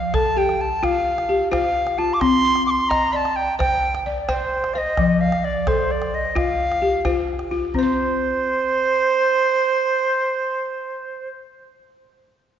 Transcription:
Already playing: flute F5, balafon F5
0.14 balafon A4, flute A5, calabash thump, calabash click
0.37 balafon G4, flute G5
0.49 calabash click
0.61 flute A5, calabash click
0.83 balafon F4, flute F5, calabash thump, calabash click
1.18 calabash click
1.29 balafon G4, calabash click
1.41 calabash click
1.51 balafon F4 C5, flute F5, calabash thump, calabash click
1.64 calabash click
1.87 calabash click
1.98 balafon F4, flute A5
2.14 flute D6
2.20 balafon C4, flute C6, calabash thump, calabash click
2.33 calabash click
2.45 balafon C6
2.55 calabash click
2.66 flute C6 D6, calabash click
2.79 calabash click
2.89 balafon D#5, flute A#5, calabash thump, calabash click
3.12 balafon D5, flute A5 C6
3.25 calabash click
3.36 flute G5, calabash click
3.59 balafon C5, flute G5, calabash thump, calabash click
3.95 calabash click
4.06 balafon D5, calabash click
4.18 flute D5, calabash click
4.29 flute C5, balafon C5 G5, calabash thump, calabash click
4.41 calabash click
4.64 calabash click
4.74 balafon C5, flute D#5 F5
4.97 balafon F3, calabash thump, calabash click
5.21 flute F5
5.32 calabash click
5.44 flute D5, calabash click
5.67 balafon A4, flute C5, calabash thump, calabash click
5.79 calabash click
5.90 flute D5, calabash click
6.02 calabash click
6.14 flute D#5, calabash click
6.25 calabash click
6.35 balafon F4, flute F5, calabash thump, calabash click
6.72 calabash click
6.82 balafon G4, calabash click
7.05 balafon F4 C5, calabash thump, calabash click
7.17 calabash click
7.39 calabash click
7.51 balafon F4
7.74 balafon C4, flute C5, calabash thump
7.79 balafon C5
7.83 balafon C6

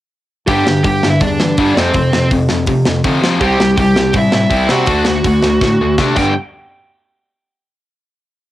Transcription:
0.47 bass clarinet G2, distorted electric guitar G2 D3 G3, lead electric guitar G4 G5, kick, open hi-hat
0.66 distorted electric guitar G2 D3, bass clarinet G2, snare
0.84 distorted electric guitar G2 D3, bass clarinet G2, lead electric guitar G4 G5, kick, open hi-hat
1.03 distorted electric guitar G2 D3, bass clarinet G2, snare
1.09 lead electric guitar E4 E5
1.20 bass clarinet E2, distorted electric guitar G2 D3, lead electric guitar D4 D5, kick, open hi-hat
1.40 distorted electric guitar G2 D3, bass clarinet E3, snare
1.57 bass clarinet G2, distorted electric guitar G2 D3 G3, kick, open hi-hat
1.76 bass clarinet F2, distorted electric guitar F2 C3 F3, lead electric guitar C4 C5, snare
1.94 bass clarinet F2, distorted electric guitar F2 C3, kick, open hi-hat
2.12 bass clarinet F2, distorted electric guitar F2 C3, snare
2.31 bass clarinet F2, distorted electric guitar F2 C3, kick, open hi-hat
2.49 distorted electric guitar F2 C3, bass clarinet F2, snare
2.66 distorted electric guitar F2 C3, bass clarinet C3, kick, open hi-hat
2.85 distorted electric guitar F2 C3, bass clarinet F2, snare
3.04 distorted electric guitar F2 C3 F3, bass clarinet D3, kick, open hi-hat
3.21 distorted electric guitar F2 C3 F3, bass clarinet F3, snare
3.41 bass clarinet C2, distorted electric guitar C3 G3 C4, lead electric guitar G4 G5, kick, open hi-hat
3.59 bass clarinet C2, distorted electric guitar C3 G3, snare
3.77 bass clarinet C2, distorted electric guitar C3 G3, lead electric guitar G4 G5, kick, open hi-hat
3.96 bass clarinet C2, distorted electric guitar C3 G3, snare
4.13 bass clarinet A2, distorted electric guitar C3 G3, lead electric guitar E4, kick, open hi-hat
4.19 lead electric guitar E5
4.31 bass clarinet A2, distorted electric guitar C3 G3, lead electric guitar E4 E5, snare
4.50 bass clarinet C2, distorted electric guitar C3 G3 C4, kick, open hi-hat
4.54 overdriven electric guitar C3
4.69 distorted electric guitar C3 G3 C4, bass clarinet C3, lead electric guitar F#4 F#5, snare
4.86 bass clarinet D2, distorted electric guitar D3 A3 D4, kick, open hi-hat
5.05 bass clarinet D2, distorted electric guitar D3 A3, snare
5.24 bass clarinet D2, distorted electric guitar D3 A3, kick, open hi-hat
5.42 bass clarinet D2, distorted electric guitar D3 A3, snare
5.61 bass clarinet A2, distorted electric guitar D3 A3, kick, snare
5.80 bass clarinet D2, distorted electric guitar D3 A3
5.98 bass clarinet C3, distorted electric guitar D3 A3 D4, kick, snare
6.16 bass clarinet G2, distorted electric guitar G2 D3 G3, lead electric guitar G5, kick, crash

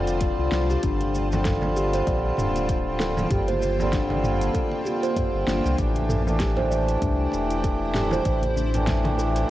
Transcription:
Already playing: sub bass F1, harmonium D3 G3 C4 F4, ambient pad F4 C5 D5 A5
0.08 closed hi-hat, shaker
0.21 steel tongue drum D5, kick, closed hi-hat, shaker
0.39 sub bass C2, steel tongue drum F4
0.52 sub bass C2, snare, shaker
0.70 steel tongue drum G4, muted conga, shaker
0.82 sub bass G1, harmonium D3 G3 C4 F4, ambient pad A#3 G5, steel tongue drum D4, kick, closed hi-hat, shaker
1.00 closed hi-hat, high conga
1.15 high conga, shaker
1.30 harmonium D3 G3 C4, low conga, shaker
1.34 harmonium F4
1.45 steel tongue drum A4, kick, snare, closed hi-hat, mid tom, shaker
1.62 muted conga, high conga, low conga
1.77 steel tongue drum G4, shaker
1.93 steel tongue drum C5, closed hi-hat, shaker
2.07 sub bass A#1, steel tongue drum D5, kick, closed hi-hat, shaker
2.37 sub bass D1, steel tongue drum D4, mid tom, muted conga, shaker
2.55 closed hi-hat, high conga, shaker
2.69 kick, closed hi-hat, shaker
3.00 steel tongue drum A4, snare, shaker
3.17 muted conga, high conga, low conga, shaker
3.30 sub bass G1, harmonium D3 G3 C4 F4, steel tongue drum G4, kick, closed hi-hat, mid tom, shaker
3.48 steel tongue drum C5, closed hi-hat, high conga
3.61 steel tongue drum D5, high conga, shaker
3.77 harmonium D3 G3 C4, low conga, shaker
3.81 harmonium F4
3.93 steel tongue drum D4, kick, snare, closed hi-hat, shaker
4.10 muted conga, high conga, low conga
4.24 mid tom, shaker
4.41 closed hi-hat, shaker
4.54 steel tongue drum A4, kick, closed hi-hat, high conga, shaker
4.72 muted conga
4.83 harmonium D3 G3 C4, steel tongue drum G4, muted conga, shaker
4.87 harmonium F4
5.03 steel tongue drum C5, closed hi-hat, shaker
5.16 steel tongue drum D5, kick, closed hi-hat, mid tom, shaker
5.34 sub bass G1
5.47 sub bass G1, steel tongue drum D4, snare, shaker
5.64 sub bass C2, muted conga, shaker
5.77 sub bass A1, harmonium E3 A3 D4 G4, ambient pad E4 C5, kick, closed hi-hat, shaker
5.95 closed hi-hat, high conga
6.09 steel tongue drum A4, mid tom, high conga, shaker
6.24 harmonium E3 A3 D4, low conga, shaker
6.28 harmonium G4
6.40 steel tongue drum G4, kick, snare, closed hi-hat, shaker
6.57 steel tongue drum C5, muted conga, high conga, low conga
6.71 steel tongue drum D5, shaker
6.89 closed hi-hat, shaker
7.02 sub bass C2, steel tongue drum D4, kick, closed hi-hat, mid tom, shaker
7.32 sub bass E1, muted conga, shaker
7.49 closed hi-hat, high conga, shaker
7.64 steel tongue drum A4, kick, closed hi-hat, shaker
7.94 steel tongue drum G4, snare, mid tom, shaker
8.11 steel tongue drum C5, muted conga, high conga, low conga, shaker
8.25 sub bass A1, harmonium E3 A3 D4 G4, steel tongue drum D5, kick, closed hi-hat, shaker
8.41 closed hi-hat, high conga
8.56 steel tongue drum D4, high conga, shaker
8.72 harmonium E3 A3 D4 G4, closed hi-hat, low conga, shaker
8.87 kick, snare, closed hi-hat, mid tom, shaker
9.04 muted conga, high conga, low conga
9.18 steel tongue drum A4, shaker
9.36 closed hi-hat, shaker

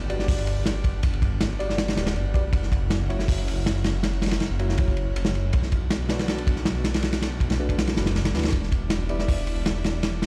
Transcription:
Already playing: analog synth pad G3 B3 D4 F#5
0.00 detuned saw bass G1
0.10 synth stab B3 F#4 G4 D5, ride
0.19 synth stab B3 F#4 G4 D5, snare
0.28 kick, open hi-hat
0.39 ride
0.47 ride
0.66 snare, ride
0.84 kick, ride
1.03 kick, ride
1.13 ride
1.22 kick, ride
1.41 snare, ride
1.50 detuned saw bass G1
1.59 synth stab B3 F#4 G4 D5, ride
1.69 synth stab B3 F#4 G4 D5, snare
1.78 snare, ride
1.88 snare, ride
1.97 detuned saw bass D1, synth stab B3 F#4 G4 D5, snare, ride
2.06 snare, ride
2.16 detuned saw bass G1, ride
2.34 detuned saw bass B1, synth stab B3 F#4 G4 D5, kick, ride
2.53 detuned saw bass F#1, analog synth pad A#3 C#4 E4, kick, ride
2.63 snare
2.72 kick, ride
2.90 snare, ride
3.09 synth stab A#3 E4 F#4 C#5, ride
3.19 synth stab A#3 E4 F#4 C#5, snare
3.28 detuned saw bass F#1, kick, open hi-hat
3.38 ride
3.48 ride
3.66 snare, ride
3.84 snare, ride
4.03 snare, ride
4.13 ride
4.22 snare, ride
4.26 snare, ride
4.31 snare, ride
4.40 snare, ride
4.51 detuned saw bass F#1
4.59 synth stab A#3 E4 F#4 C#5, ride
4.69 synth stab A#3 E4 F#4 C#5, snare
4.78 kick, ride
4.88 kick
4.97 ride
5.16 ride
5.25 snare
5.35 ride
5.53 detuned saw bass B1, analog synth pad A3 B3 D4 F#4, kick, ride
5.63 snare
5.72 kick, ride
5.90 snare, ride
6.00 detuned saw bass B1
6.09 synth stab A3 D4 F#4 B4, snare, ride
6.19 synth stab A3 D4 F#4 B4, snare, ride
6.28 snare, ride
6.38 ride
6.47 kick, ride
6.56 snare
6.65 snare, ride
6.84 snare, ride
6.94 snare, ride
7.03 snare, ride
7.13 snare, ride
7.22 snare, ride
7.40 kick, ride
7.50 detuned saw bass B1, snare, ride
7.60 synth stab A3 D4 F#4 B4
7.69 synth stab A3 D4 F#4 B4, kick, ride
7.79 snare, ride
7.87 snare, ride
7.97 detuned saw bass F#1, synth stab A3 D4 F#4 B4, snare, ride
8.06 snare, ride
8.16 snare, ride
8.25 snare, ride
8.34 detuned saw bass D2, synth stab A3 D4 F#4 B4, snare, ride
8.38 snare, ride
8.43 snare, ride
8.48 snare, ride
8.52 detuned saw bass E1, analog synth pad G3 B3 E4, kick, ride
8.63 snare
8.72 kick, ride
8.90 snare, ride
9.09 synth stab B3 E4 G4 D5, ride
9.19 synth stab B3 E4 G4 D5, snare
9.28 detuned saw bass E1, kick, open hi-hat
9.38 ride
9.47 ride
9.66 snare, ride
9.84 snare, ride
10.03 snare, ride
10.13 ride
10.22 snare, ride

